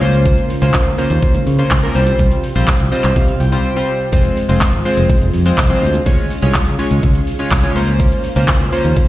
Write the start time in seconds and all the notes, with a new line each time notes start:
Already playing: F4
0.01 C#2 C#3 A#3 C#4 F4 C5 C6, open hi-hat, shaker
0.13 closed hi-hat, shaker
0.26 kick, closed hi-hat, shaker
0.38 closed hi-hat, shaker
0.50 open hi-hat, shaker
0.62 C#2 A#3 C#4 F4 C5, closed hi-hat, shaker
0.74 kick, clap, closed hi-hat, shaker
0.86 C#2, closed hi-hat, shaker
0.98 A#3 C#4 F4 C5, open hi-hat, shaker
1.10 D#2, closed hi-hat, shaker
1.23 kick, closed hi-hat, shaker
1.35 C#2, closed hi-hat, shaker
1.47 C#3, open hi-hat, shaker
1.58 A#3 C#4 F4 C5, closed hi-hat, shaker
1.71 C#2, kick, clap, closed hi-hat, shaker
1.83 A#3 C#4 F4 A#4, closed hi-hat, shaker
1.95 C2 C3 G3 C4 F4 G4 C5, open hi-hat, shaker
2.07 closed hi-hat, shaker
2.19 C2, kick, closed hi-hat, shaker
2.32 closed hi-hat, shaker
2.43 open hi-hat, shaker
2.55 A#1 G3 C4 F4 C5, closed hi-hat, shaker
2.67 kick, clap, closed hi-hat, shaker
2.80 C2, closed hi-hat, shaker
2.92 G3 C4 F4 C5 D#5, open hi-hat, shaker
3.04 C2, clap, closed hi-hat, shaker
3.16 C3 F5, kick, closed hi-hat, shaker
3.28 closed hi-hat, shaker
3.40 C2 G5, open hi-hat, shaker
3.52 G3 C4 F4 C5, closed hi-hat, shaker
3.64 G5
3.76 G3 C4 F4 C5
4.12 F1 G#3 C4 F4 C5, kick, closed hi-hat, tambourine, shaker
4.25 closed hi-hat, tambourine, shaker
4.37 open hi-hat, tambourine, shaker
4.49 F1 G#3 C4 F4 C5, closed hi-hat, shaker
4.61 kick, clap, closed hi-hat, tambourine, shaker
4.73 G#1, closed hi-hat, shaker
4.85 G#3 C4 F4 C5, open hi-hat, tambourine, shaker
4.97 F1, closed hi-hat, shaker
5.09 kick, closed hi-hat, tambourine, shaker
5.21 F1, closed hi-hat, shaker
5.33 F2, open hi-hat, tambourine, shaker
5.45 G#3 C4 F4 C5, closed hi-hat, shaker
5.58 C2, kick, clap, closed hi-hat, tambourine, shaker
5.70 G#3 C4 F4 C5, closed hi-hat, shaker
5.82 D2, open hi-hat, tambourine, shaker
5.94 closed hi-hat, tambourine, shaker
6.06 C#2 C#3 G#3 C#4 F4 G#4 C#5, kick, closed hi-hat, tambourine, shaker
6.18 closed hi-hat, tambourine, shaker
6.30 open hi-hat, tambourine, shaker
6.42 C2 G#3 C#4 F4 C#5, closed hi-hat, shaker
6.54 kick, clap, closed hi-hat, tambourine, shaker
6.67 C#2, closed hi-hat, shaker
6.79 G#3 C#4 F4 C#5, open hi-hat, tambourine, shaker
6.91 C#2, closed hi-hat, shaker
7.03 C#2, kick, closed hi-hat, tambourine, shaker
7.15 closed hi-hat, shaker
7.27 open hi-hat, tambourine, shaker
7.39 G#3 C#4 F4 C#5, closed hi-hat, shaker
7.51 C2, kick, clap, closed hi-hat, tambourine, shaker
7.63 G#3 C#4 F4 C#5, closed hi-hat, shaker
7.75 C#2 A#3 C#4 F4 C5, open hi-hat, tambourine, shaker
7.88 closed hi-hat, tambourine, shaker
8.00 kick, closed hi-hat, tambourine, shaker
8.12 closed hi-hat, shaker
8.24 open hi-hat, tambourine, shaker
8.36 C#2 A#3 C#4 F4 C5, closed hi-hat, tambourine, shaker
8.48 kick, clap, closed hi-hat, tambourine, shaker
8.60 C#2, closed hi-hat, shaker
8.72 A#3 C#4 F4 C5, open hi-hat, tambourine, shaker
8.84 D#2, closed hi-hat, shaker
8.96 kick, closed hi-hat, tambourine, shaker